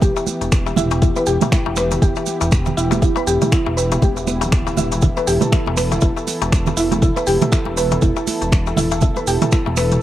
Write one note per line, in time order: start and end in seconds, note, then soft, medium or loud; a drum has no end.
0.00 0.12 E1 medium
0.00 10.02 E3 medium
0.00 10.02 B3 medium
0.00 10.02 E4 medium
0.00 5.01 G4 medium
0.00 0.15 G4 medium
0.00 kick loud
0.00 closed hi-hat soft
0.00 high conga loud
0.00 maracas medium
0.16 darbuka tek loud
0.16 maracas soft
0.26 muted conga soft
0.26 high conga medium
0.26 maracas medium
0.41 0.72 E1 loud
0.41 closed hi-hat medium
0.41 darbuka tek medium
0.41 maracas soft
0.52 finger snap loud
0.52 kick loud
0.52 closed hi-hat soft
0.52 muted conga soft
0.52 maracas medium
0.66 darbuka tek medium
0.66 maracas soft
0.76 1.10 E1 loud
0.76 0.90 E4 loud
0.76 mid tom medium
0.76 muted conga medium
0.76 high conga loud
0.76 low conga medium
0.76 maracas loud
0.91 closed hi-hat medium
0.91 darbuka ka medium
0.91 darbuka tek loud
0.91 maracas soft
1.02 1.15 E4 medium
1.02 kick loud
1.02 closed hi-hat soft
1.02 low conga loud
1.02 maracas medium
1.16 1.27 B4 medium
1.16 muted conga soft
1.16 darbuka tek medium
1.16 maracas soft
1.26 1.38 E1 loud
1.26 1.35 G4 loud
1.26 maracas loud
1.41 closed hi-hat medium
1.41 mid tom medium
1.41 muted conga soft
1.41 high conga loud
1.41 darbuka tek medium
1.41 low conga loud
1.41 maracas soft
1.52 1.66 E4 medium
1.52 finger snap loud
1.52 kick loud
1.52 closed hi-hat soft
1.52 high conga medium
1.52 maracas medium
1.66 1.97 E1 medium
1.66 muted conga soft
1.66 darbuka tek loud
1.76 1.90 B4 medium
1.76 finger snap medium
1.76 darbuka ka medium
1.76 high conga medium
1.76 maracas medium
1.91 closed hi-hat medium
1.91 mid tom medium
1.91 muted conga soft
1.91 darbuka tek medium
1.91 maracas soft
2.02 2.13 E1 medium
2.02 2.15 G4 medium
2.02 kick loud
2.02 closed hi-hat soft
2.02 darbuka ka medium
2.02 maracas medium
2.16 darbuka ka medium
2.16 darbuka tek medium
2.16 maracas soft
2.26 muted conga soft
2.26 maracas loud
2.41 2.72 E1 loud
2.41 closed hi-hat medium
2.41 darbuka tek loud
2.41 maracas soft
2.52 finger snap loud
2.52 kick loud
2.52 closed hi-hat soft
2.52 muted conga soft
2.52 maracas medium
2.66 darbuka tek medium
2.66 low conga loud
2.66 maracas soft
2.77 3.10 E1 loud
2.77 2.90 E4 loud
2.77 muted conga soft
2.77 maracas loud
2.91 closed hi-hat medium
2.91 darbuka ka medium
2.91 darbuka tek medium
2.91 high conga loud
2.91 maracas soft
3.02 3.15 E4 medium
3.02 kick loud
3.02 closed hi-hat soft
3.02 low conga medium
3.02 maracas medium
3.16 3.27 B4 medium
3.16 muted conga soft
3.16 darbuka tek loud
3.16 maracas soft
3.27 3.38 E1 loud
3.27 3.35 G4 loud
3.27 maracas loud
3.42 closed hi-hat medium
3.42 mid tom medium
3.42 muted conga soft
3.42 darbuka tek medium
3.42 high conga loud
3.42 low conga loud
3.42 maracas soft
3.52 3.66 E4 medium
3.52 finger snap loud
3.52 kick loud
3.52 closed hi-hat soft
3.52 maracas soft
3.66 3.98 E1 medium
3.66 muted conga medium
3.66 darbuka tek medium
3.77 3.90 B4 medium
3.77 darbuka ka medium
3.77 maracas loud
3.92 closed hi-hat medium
3.92 mid tom medium
3.92 muted conga soft
3.92 darbuka tek medium
3.92 maracas soft
4.02 4.43 E1 medium
4.02 4.15 G4 medium
4.02 kick loud
4.02 closed hi-hat soft
4.02 high conga loud
4.02 maracas medium
4.17 darbuka tek medium
4.17 maracas soft
4.27 4.35 B3 medium
4.27 muted conga medium
4.27 high conga medium
4.27 maracas medium
4.41 4.79 D1 medium
4.41 closed hi-hat medium
4.41 darbuka tek loud
4.41 maracas soft
4.52 finger snap loud
4.52 kick loud
4.52 closed hi-hat soft
4.52 muted conga soft
4.52 maracas medium
4.67 darbuka tek medium
4.67 maracas soft
4.77 5.10 E1 loud
4.77 4.90 E5 medium
4.77 mid tom medium
4.77 muted conga medium
4.77 high conga loud
4.77 low conga medium
4.77 maracas loud
4.92 closed hi-hat medium
4.92 darbuka ka medium
4.92 darbuka tek medium
4.92 maracas soft
5.02 5.15 E4 medium
5.02 10.02 A4 medium
5.02 kick loud
5.02 closed hi-hat soft
5.02 low conga medium
5.02 maracas soft
5.17 5.27 B4 medium
5.17 muted conga soft
5.17 darbuka tek medium
5.17 maracas soft
5.27 5.38 E1 loud
5.27 5.35 G4 loud
5.27 open hi-hat medium
5.27 maracas medium
5.41 closed hi-hat medium
5.41 mid tom loud
5.41 muted conga soft
5.41 high conga loud
5.41 darbuka tek medium
5.41 low conga loud
5.41 maracas soft
5.52 5.66 E4 medium
5.52 finger snap loud
5.52 kick loud
5.52 closed hi-hat soft
5.52 high conga medium
5.52 maracas soft
5.66 5.98 E1 medium
5.66 muted conga medium
5.66 darbuka tek loud
5.77 5.90 B4 medium
5.77 finger snap medium
5.77 open hi-hat medium
5.77 darbuka ka medium
5.77 high conga medium
5.77 maracas medium
5.92 closed hi-hat medium
5.92 mid tom medium
5.92 muted conga soft
5.92 darbuka tek loud
5.92 maracas soft
6.01 6.13 E1 medium
6.01 6.15 E4 medium
6.01 kick loud
6.01 closed hi-hat soft
6.01 darbuka ka medium
6.01 maracas medium
6.17 darbuka ka medium
6.17 darbuka tek medium
6.17 maracas soft
6.27 open hi-hat medium
6.27 muted conga soft
6.27 maracas medium
6.42 6.73 E1 loud
6.42 closed hi-hat medium
6.42 darbuka tek loud
6.42 maracas soft
6.52 finger snap loud
6.52 kick loud
6.52 closed hi-hat soft
6.52 muted conga soft
6.52 maracas medium
6.66 darbuka tek medium
6.66 low conga loud
6.66 maracas soft
6.77 7.10 E1 loud
6.77 6.90 E4 loud
6.77 open hi-hat medium
6.77 muted conga medium
6.77 maracas loud
6.92 closed hi-hat medium
6.92 darbuka ka medium
6.92 high conga loud
6.92 darbuka tek medium
6.92 maracas soft
7.02 7.15 E4 medium
7.02 kick loud
7.02 closed hi-hat soft
7.02 low conga loud
7.02 maracas medium
7.16 7.27 B4 medium
7.16 muted conga soft
7.16 darbuka tek medium
7.16 maracas soft
7.27 7.38 E1 loud
7.27 7.35 G4 loud
7.27 open hi-hat medium
7.27 maracas medium
7.42 closed hi-hat medium
7.42 mid tom medium
7.42 muted conga soft
7.42 darbuka tek medium
7.42 high conga loud
7.42 low conga loud
7.42 maracas soft
7.52 7.66 E4 medium
7.52 finger snap loud
7.52 kick loud
7.52 closed hi-hat soft
7.52 maracas medium
7.65 7.97 E1 medium
7.65 muted conga medium
7.65 darbuka tek medium
7.77 7.90 B4 medium
7.77 open hi-hat medium
7.77 darbuka ka medium
7.77 maracas medium
7.91 closed hi-hat medium
7.91 mid tom medium
7.91 muted conga soft
7.91 darbuka tek medium
7.91 maracas soft
8.02 8.13 E1 medium
8.02 8.15 E4 medium
8.02 kick loud
8.02 closed hi-hat soft
8.02 high conga medium
8.02 maracas soft
8.16 darbuka tek medium
8.16 maracas soft
8.27 open hi-hat medium
8.27 muted conga medium
8.27 high conga medium
8.27 maracas medium
8.41 8.72 E1 loud
8.41 closed hi-hat medium
8.41 darbuka tek medium
8.41 maracas soft
8.52 finger snap loud
8.52 kick loud
8.52 closed hi-hat soft
8.52 muted conga soft
8.52 maracas soft
8.66 darbuka tek medium
8.66 maracas soft
8.76 9.10 E1 loud
8.76 8.90 E4 loud
8.76 mid tom medium
8.76 open hi-hat medium
8.76 muted conga medium
8.76 high conga medium
8.76 low conga medium
8.76 maracas loud
8.91 closed hi-hat medium
8.91 darbuka ka medium
8.91 darbuka tek medium
8.91 maracas soft
9.01 9.15 E4 medium
9.01 kick loud
9.01 closed hi-hat soft
9.01 low conga loud
9.01 maracas soft
9.16 9.27 B4 medium
9.16 muted conga medium
9.16 darbuka tek medium
9.16 maracas soft
9.27 9.38 E1 loud
9.27 9.35 G4 loud
9.27 open hi-hat medium
9.27 maracas medium
9.41 closed hi-hat medium
9.41 mid tom loud
9.41 muted conga soft
9.41 high conga medium
9.41 darbuka tek medium
9.41 low conga loud
9.41 maracas soft
9.52 9.66 E4 medium
9.52 finger snap loud
9.52 kick loud
9.52 closed hi-hat soft
9.52 high conga medium
9.52 maracas soft
9.66 9.97 E1 medium
9.66 muted conga medium
9.66 darbuka tek medium
9.76 9.90 B4 medium
9.76 finger snap medium
9.76 open hi-hat medium
9.76 darbuka ka medium
9.76 high conga medium
9.76 maracas medium
9.91 closed hi-hat medium
9.91 mid tom medium
9.91 muted conga soft
9.91 darbuka tek medium
9.91 maracas soft